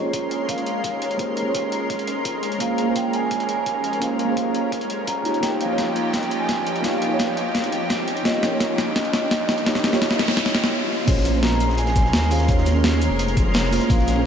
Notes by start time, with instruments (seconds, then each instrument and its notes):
Already playing: detuned saw bass A#1, analog synth pad G#3 C#4 A#4 C6, fm electric piano C#4 F4 G#4 C5, vibraphone C#5, riser
0.00 fm electric piano A#3 C#4
0.05 fm electric piano F4 G#4 C#5
0.13 kick, closed hi-hat
0.31 closed hi-hat
0.49 vibraphone F5, kick, closed hi-hat
0.58 closed hi-hat
0.66 closed hi-hat
0.84 detuned saw bass D#2, kick, closed hi-hat
1.02 vibraphone C#5, closed hi-hat
1.11 closed hi-hat
1.18 fm electric piano A#3 C#4 F4 G#4 C5, kick, closed hi-hat
1.37 closed hi-hat
1.43 fm electric piano A#3 C#4 F4
1.48 fm electric piano G#4 C#5
1.55 kick, closed hi-hat
1.72 closed hi-hat
1.81 detuned saw bass F1
1.90 kick, closed hi-hat
1.99 closed hi-hat
2.07 closed hi-hat
2.25 kick, closed hi-hat
2.43 closed hi-hat
2.52 closed hi-hat
2.59 detuned saw bass A#1, fm electric piano A#3 C#4 F4 G#4 C5, vibraphone F5, kick, closed hi-hat
2.78 closed hi-hat
2.84 fm electric piano A#3 C#4 F4
2.89 fm electric piano G#4 C5
2.96 vibraphone G5, kick, closed hi-hat
3.13 vibraphone G#5, closed hi-hat
3.31 vibraphone G#5, kick, closed hi-hat
3.40 closed hi-hat
3.49 closed hi-hat
3.66 detuned saw bass D#2, kick, closed hi-hat
3.84 closed hi-hat
3.93 closed hi-hat
4.00 fm electric piano A#3 C#4 F4 G#4 C5, vibraphone F5, kick, closed hi-hat
4.19 closed hi-hat
4.25 fm electric piano A#3 C#4 F4
4.30 fm electric piano G#4 C5
4.37 kick, closed hi-hat
4.55 closed hi-hat
4.64 detuned saw bass F1
4.72 kick, closed hi-hat
4.81 closed hi-hat
4.90 closed hi-hat
5.07 detuned saw bass C2, vibraphone A#5, kick, closed hi-hat
5.24 detuned saw bass D#2, analog synth pad F3 D#4 G4, fm electric piano A#3 D#4 F4 G4 C#5, closed hi-hat
5.34 closed hi-hat
5.41 detuned saw bass D#2, fm electric piano A#3 D#4 F4 G4 C#5, vibraphone G5, kick, snare, closed hi-hat
5.61 vibraphone F5, closed hi-hat
5.66 fm electric piano A#3 D#4 F4
5.71 fm electric piano G4 C#5
5.78 kick, snare, closed hi-hat
5.96 closed hi-hat
6.13 vibraphone G5, kick, snare, closed hi-hat
6.23 closed hi-hat
6.31 closed hi-hat
6.40 vibraphone G#5
6.49 detuned saw bass G2, kick, snare, closed hi-hat
6.66 vibraphone G5, closed hi-hat
6.76 closed hi-hat
6.82 fm electric piano A#3 D#4 F4 G4 C#5, vibraphone F5, kick, snare, closed hi-hat
7.02 closed hi-hat
7.07 fm electric piano A#3 D#4 F4
7.12 fm electric piano G4 C#5
7.19 kick, snare, closed hi-hat
7.37 closed hi-hat
7.46 detuned saw bass A#1
7.55 kick, snare, closed hi-hat
7.64 closed hi-hat
7.72 closed hi-hat
7.90 kick, snare, closed hi-hat
8.08 closed hi-hat
8.17 closed hi-hat
8.23 detuned saw bass D#2, fm electric piano A#3 D#4 F4 G4 C#5, vibraphone D#5, kick, snare, closed hi-hat
8.43 vibraphone C#5, snare, closed hi-hat
8.48 fm electric piano A#3 D#4 F4
8.53 fm electric piano G4 C#5
8.60 kick, snare, closed hi-hat
8.78 snare, closed hi-hat
8.96 vibraphone D#5, kick, snare, closed hi-hat
9.05 closed hi-hat
9.14 snare, closed hi-hat
9.31 detuned saw bass G2, kick, snare, closed hi-hat
9.49 snare, closed hi-hat
9.58 closed hi-hat
9.65 fm electric piano A#3 D#4 F4 G4 C#5, kick, snare, closed hi-hat, noise sweep
9.75 snare
9.84 snare, closed hi-hat
9.89 fm electric piano A#3 D#4 F4, snare
9.94 fm electric piano G4 C#5
10.02 kick, snare, closed hi-hat
10.11 snare
10.19 snare, closed hi-hat
10.28 detuned saw bass A#1, snare
10.37 kick, snare, closed hi-hat
10.46 snare, closed hi-hat
10.55 snare, closed hi-hat
10.64 snare
11.06 detuned saw bass A#1, analog synth pad G#3 C#4 A#4 C6, fm electric piano A#3 C#4 F4 G#4 C5, vibraphone C#5, kick, closed hi-hat, crash
11.17 snare
11.25 snare, closed hi-hat, shaker
11.31 fm electric piano A#3 C#4 F4
11.36 fm electric piano G#4 C5
11.43 vibraphone A#5, snare, closed hi-hat
11.52 snare, shaker
11.60 closed hi-hat, shaker
11.69 snare
11.77 vibraphone G#5, closed hi-hat
11.86 snare, closed hi-hat
11.96 kick, snare, closed hi-hat, shaker
12.05 snare
12.13 detuned saw bass D#2, snare, closed hi-hat
12.22 closed hi-hat
12.29 fm electric piano A#3 C#4 F4 G#4 C5, vibraphone F5, closed hi-hat, open hi-hat, shaker
12.40 snare, closed hi-hat
12.47 fm electric piano A#3 C#4 F4 G#4 C5, vibraphone C#5, kick, closed hi-hat
12.58 snare
12.66 snare, closed hi-hat, shaker
12.72 fm electric piano A#3 C#4 F4
12.77 fm electric piano G#4 C#5
12.84 snare, closed hi-hat
12.93 snare, shaker
13.02 closed hi-hat, shaker
13.11 detuned saw bass F1
13.19 closed hi-hat
13.28 closed hi-hat
13.37 kick, closed hi-hat, shaker
13.54 snare, closed hi-hat
13.64 snare
13.71 fm electric piano A#3 C#4 F4 G#4 C5, snare, closed hi-hat, open hi-hat, shaker
13.81 snare, closed hi-hat
13.88 detuned saw bass A#1, fm electric piano A#3 C#4 F4 G#4 C5, vibraphone F5, kick, closed hi-hat
13.99 snare
14.07 snare, closed hi-hat, shaker
14.13 fm electric piano A#3 C#4 F4
14.18 fm electric piano G#4 C5